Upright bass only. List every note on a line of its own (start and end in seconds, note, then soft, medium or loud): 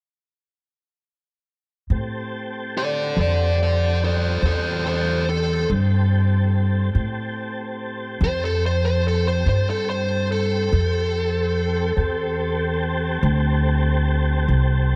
1.90 3.12 A2 medium
3.17 4.39 F2 medium
4.42 5.64 E2 medium
5.70 6.91 G2 medium
6.95 8.16 A2 medium
8.21 9.42 F2 medium
9.46 10.68 G2 medium
10.73 11.94 F2 medium
11.97 13.19 E2 medium
13.23 14.45 D2 medium
14.48 14.96 C2 medium